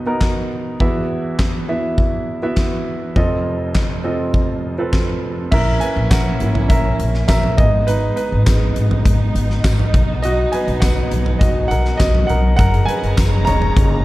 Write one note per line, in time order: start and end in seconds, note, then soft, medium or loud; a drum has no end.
0.00 0.47 B1 medium
0.00 0.47 B2 medium
0.00 0.06 B3 medium
0.00 0.07 D#4 medium
0.00 0.07 F#4 medium
0.00 0.82 B4 medium
0.00 0.82 D#5 medium
0.06 0.76 B3 medium
0.06 0.76 D#4 medium
0.06 0.76 F#4 medium
0.06 0.76 A#4 medium
0.21 kick medium
0.21 snare medium
0.21 clap medium
0.80 3.12 E2 medium
0.80 3.12 E3 medium
0.80 1.63 B3 medium
0.80 1.63 E4 medium
0.80 1.63 F#4 medium
0.80 1.63 E5 medium
0.80 kick medium
1.39 kick medium
1.39 snare medium
1.39 clap medium
1.69 2.38 B3 medium
1.69 2.38 E4 medium
1.69 2.38 F#4 soft
1.69 2.38 E5 medium
1.98 kick medium
2.42 3.12 B3 medium
2.42 3.12 E4 medium
2.42 3.12 F#4 medium
2.42 3.12 E5 medium
2.57 kick medium
2.57 snare medium
2.57 clap medium
3.16 5.48 F1 medium
3.16 5.48 F2 medium
3.16 3.99 C4 medium
3.16 3.99 F4 medium
3.16 3.99 A4 medium
3.16 3.99 D#5 medium
3.16 kick medium
3.75 kick loud
3.75 snare medium
3.75 clap medium
4.04 4.73 C4 medium
4.04 4.74 F4 medium
4.04 4.74 A4 medium
4.04 4.74 D#5 medium
4.34 kick medium
4.78 5.47 C4 medium
4.78 5.47 F4 medium
4.78 5.48 A4 medium
4.78 5.48 B4 medium
4.93 kick medium
4.93 snare medium
4.93 clap medium
5.52 5.76 A#1 medium
5.52 6.39 A#3 medium
5.52 7.56 A#3 medium
5.52 7.56 C#4 medium
5.52 6.39 C#4 soft
5.52 7.57 E4 medium
5.52 6.40 E4 medium
5.52 5.80 A#4 medium
5.52 5.82 E5 loud
5.52 kick loud
5.52 crash medium
5.80 6.09 B4 medium
5.80 6.11 G#5 medium
5.80 closed hi-hat medium
5.96 6.08 A#1 loud
6.10 6.35 A#1 medium
6.10 6.67 A#4 medium
6.10 6.71 F#5 medium
6.10 kick loud
6.10 snare loud
6.10 clap medium
6.10 closed hi-hat loud
6.10 tambourine medium
6.40 6.64 G#1 medium
6.40 6.67 A#3 soft
6.40 6.67 C#4 soft
6.40 6.67 E4 soft
6.40 closed hi-hat medium
6.55 floor tom medium
6.69 6.94 A#1 medium
6.69 7.25 A#4 medium
6.69 7.26 E5 medium
6.69 kick loud
6.69 closed hi-hat medium
6.99 7.23 A#1 medium
6.99 closed hi-hat medium
7.14 snare soft
7.28 7.53 A#1 medium
7.28 7.57 A#4 medium
7.28 7.59 E5 medium
7.28 kick loud
7.28 snare medium
7.28 clap medium
7.28 closed hi-hat medium
7.28 tambourine medium
7.43 floor tom medium
7.57 8.07 G#1 medium
7.57 7.97 G#3 soft
7.57 9.91 G#3 medium
7.57 12.55 B3 medium
7.57 7.98 B3 soft
7.57 12.55 D#4 medium
7.57 7.87 D#4 medium
7.57 7.86 G#4 medium
7.57 7.85 D#5 medium
7.57 kick loud
7.57 closed hi-hat medium
7.87 8.16 D#4 medium
7.87 8.15 B4 medium
7.87 closed hi-hat medium
8.16 8.46 D#4 soft
8.16 9.89 B4 medium
8.16 closed hi-hat medium
8.32 8.44 G#1 medium
8.46 8.71 G#1 medium
8.46 8.73 G#3 soft
8.46 8.74 B3 soft
8.46 8.74 D#4 soft
8.46 kick loud
8.46 snare loud
8.46 clap medium
8.46 closed hi-hat medium
8.46 tambourine medium
8.76 9.00 G#1 medium
8.76 closed hi-hat medium
8.91 floor tom medium
9.05 9.30 G#1 medium
9.05 kick loud
9.05 closed hi-hat medium
9.35 9.59 G#1 medium
9.35 closed hi-hat medium
9.50 snare soft
9.64 9.89 G#1 medium
9.64 kick loud
9.64 snare loud
9.64 clap medium
9.64 closed hi-hat medium
9.64 tambourine medium
9.79 floor tom medium
9.94 10.42 B1 loud
9.94 14.05 F#3 medium
9.94 kick loud
9.94 closed hi-hat medium
10.22 10.52 F#4 medium
10.22 10.50 D#5 medium
10.22 closed hi-hat medium
10.52 10.61 B4 medium
10.52 10.59 G#5 medium
10.52 closed hi-hat medium
10.68 10.80 B1 medium
10.68 closed hi-hat soft
10.80 11.06 B1 loud
10.80 11.66 F#3 medium
10.80 11.67 B3 soft
10.80 11.67 D#4 soft
10.80 11.38 B4 medium
10.80 11.36 F#5 medium
10.80 kick loud
10.80 snare loud
10.80 clap medium
10.80 closed hi-hat loud
10.80 tambourine medium
11.11 11.36 B1 medium
11.11 closed hi-hat medium
11.26 floor tom medium
11.39 11.65 B1 loud
11.39 11.69 F#4 medium
11.39 11.71 D#5 medium
11.39 kick loud
11.39 closed hi-hat medium
11.68 11.94 B1 medium
11.68 11.98 A#4 medium
11.68 12.00 F#5 medium
11.68 closed hi-hat medium
11.85 snare soft
11.97 12.24 B1 medium
11.97 12.27 F#4 medium
11.97 12.26 D#5 medium
11.97 kick loud
11.97 snare loud
11.97 clap medium
11.97 closed hi-hat medium
11.97 tambourine medium
12.15 floor tom medium
12.27 12.53 B1 medium
12.27 12.57 A#4 medium
12.27 12.55 F#5 medium
12.27 closed hi-hat medium
12.56 12.83 F#1 loud
12.56 14.05 C#4 medium
12.56 14.05 D#4 medium
12.56 14.05 G#4 medium
12.56 12.87 A#4 medium
12.56 12.88 F#5 loud
12.56 14.05 A#5 medium
12.56 kick loud
12.56 closed hi-hat medium
12.74 closed hi-hat medium
12.86 13.43 B4 medium
12.86 13.42 G#5 loud
12.86 closed hi-hat medium
13.03 13.15 F#1 loud
13.03 closed hi-hat soft
13.18 13.47 F#1 medium
13.18 kick loud
13.18 snare loud
13.18 clap medium
13.18 closed hi-hat loud
13.18 tambourine medium
13.45 13.71 E1 medium
13.45 14.05 G#3 medium
13.45 14.05 A#3 soft
13.45 14.05 D#4 medium
13.45 14.05 C#5 medium
13.45 14.05 A#5 loud
13.45 closed hi-hat medium
13.45 floor tom medium
13.62 floor tom medium
13.77 14.01 F#1 loud
13.77 kick loud
13.77 closed hi-hat medium